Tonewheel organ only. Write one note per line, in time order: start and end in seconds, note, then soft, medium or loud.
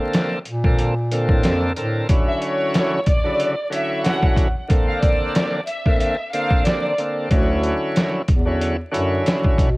0.00 0.38 D3 medium
0.00 0.39 A#3 medium
0.00 0.39 C4 medium
0.00 0.39 A4 loud
0.64 0.94 D3 medium
0.64 0.94 A#3 medium
0.64 0.95 C4 medium
0.64 0.95 A4 loud
1.12 1.72 D3 medium
1.12 1.72 A#3 medium
1.12 1.73 C4 medium
1.12 1.73 A4 loud
1.76 2.07 D3 medium
1.76 2.07 C4 medium
1.76 2.08 A4 medium
1.76 2.07 A#4 medium
2.08 3.00 D3 medium
2.08 3.00 F#3 medium
2.08 3.00 C#4 medium
2.08 3.01 E4 loud
3.24 3.55 C#3 medium
3.24 3.54 D3 medium
3.24 3.55 F#3 medium
3.24 3.55 E4 loud
3.70 4.47 D3 loud
3.70 4.48 F#3 medium
3.70 4.48 C#4 medium
3.70 4.48 E4 loud
4.68 5.60 D3 medium
4.68 5.60 A#3 loud
4.68 5.61 C4 medium
4.68 5.61 A4 loud
5.86 6.16 D3 medium
5.86 6.16 A#3 medium
5.86 6.16 C4 medium
5.86 6.17 A4 loud
6.33 6.94 D3 loud
6.33 6.94 A#3 medium
6.33 6.94 C4 medium
6.33 6.95 A4 loud
6.98 7.28 D3 medium
6.98 7.29 A#3 medium
6.98 7.29 C4 medium
6.98 7.29 A4 medium
7.30 8.21 D3 medium
7.30 8.22 F#3 medium
7.30 8.22 C#4 medium
7.30 8.22 E4 loud
8.46 8.76 D3 medium
8.46 8.76 F#3 medium
8.46 8.77 C#4 medium
8.46 8.77 E4 loud
8.92 9.69 D3 medium
8.92 9.69 F#3 medium
8.92 9.70 C#4 medium
8.92 9.70 E4 loud